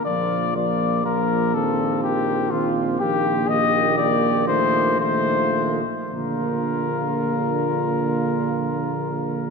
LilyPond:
<<
  \new Staff \with { instrumentName = "Cornet" } { \time 3/4 \key bes \major \tempo 4 = 118 d''4 d''4 bes'4 | a'4 g'4 f'8 r8 | g'4 ees''4 d''4 | c''4 c''4. r8 |
bes'2.~ | bes'2. | }
  \new Staff \with { instrumentName = "Trumpet" } { \time 3/4 \key bes \major f'4 f'4 f'4 | f'2 f'4 | g'4 g'2 | f'4 f'4. r8 |
f'2.~ | f'2. | }
  \new Staff \with { instrumentName = "French horn" } { \time 3/4 \key bes \major bes4 bes4 bes4 | c'2 c'4 | bes4 bes2 | a4 a4. r8 |
bes2.~ | bes2. | }
  \new Staff \with { instrumentName = "Trombone" } { \clef bass \time 3/4 \key bes \major f4 f4 f4 | ees2 ees4 | ees4 ees2 | ees4 ees4. r8 |
d2.~ | d2. | }
  \new Staff \with { instrumentName = "Tuba" } { \clef bass \time 3/4 \key bes \major bes,,2.~ | bes,,2. | bes,,2.~ | bes,,2~ bes,,8 r8 |
bes,,2.~ | bes,,2. | }
>>